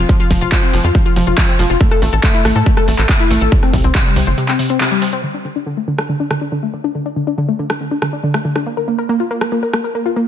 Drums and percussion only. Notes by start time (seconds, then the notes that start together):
0.09 kick, closed hi-hat
0.20 closed hi-hat
0.31 kick, open hi-hat
0.41 closed hi-hat
0.52 kick, clap, closed hi-hat
0.63 closed hi-hat
0.73 open hi-hat
0.84 closed hi-hat
0.95 kick, closed hi-hat
1.06 closed hi-hat
1.16 open hi-hat
1.27 closed hi-hat
1.38 kick, clap, closed hi-hat
1.49 closed hi-hat
1.59 open hi-hat
1.70 closed hi-hat
1.81 kick, closed hi-hat
1.91 cross-stick, closed hi-hat
2.02 open hi-hat
2.13 closed hi-hat
2.23 kick, clap, closed hi-hat
2.34 closed hi-hat
2.45 cross-stick, open hi-hat
2.56 closed hi-hat
2.66 kick, closed hi-hat
2.77 cross-stick, closed hi-hat
2.88 open hi-hat
2.99 clap, closed hi-hat
3.09 kick, clap, closed hi-hat
3.20 closed hi-hat
3.31 open hi-hat
3.41 closed hi-hat
3.52 kick, closed hi-hat
3.63 cross-stick, closed hi-hat
3.73 kick, open hi-hat
3.84 closed hi-hat
3.95 kick, clap, closed hi-hat
4.06 closed hi-hat
4.16 open hi-hat
4.27 closed hi-hat
4.38 closed hi-hat
4.48 clap, closed hi-hat
4.59 open hi-hat
4.70 closed hi-hat
4.81 clap, closed hi-hat
4.91 closed hi-hat
5.02 open hi-hat
5.13 closed hi-hat
5.98 cross-stick
6.31 cross-stick
7.70 cross-stick
8.02 cross-stick
8.34 cross-stick
8.56 cross-stick
9.41 cross-stick
9.73 cross-stick